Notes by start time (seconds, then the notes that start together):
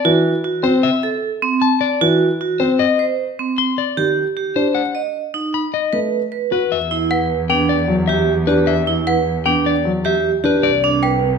Already playing: D5
0.05 E3 F#4
0.44 F#4
0.63 C4 C5
0.83 E5
1.03 A4
1.42 C4
1.62 A5
1.81 D5
2.01 E3 F#4
2.41 F#4
2.60 C4 C5
2.79 D#5
2.99 C5
3.39 C4
3.58 C6
3.78 D5
3.97 D#3 G4
4.37 G4
4.56 D4 C5
4.75 F#5
4.95 D#5
5.34 D#4
5.54 B5
5.74 D#5
5.93 A3 B4
6.32 B4
6.51 F#4 B4
6.71 E2 E5
6.91 E4
7.11 B4 F#5
7.49 B3 D4 G5
7.69 D5
7.88 F#3
8.07 G4 E5
8.47 D4 G4 B4
8.67 E5
8.87 E4
9.07 B4 F#5
9.46 B3 D4 G5
9.66 D5
9.85 F#3
10.05 G4 E5
10.44 D4 G4 B4
10.63 C2 D5
10.84 D4
11.03 B4 G5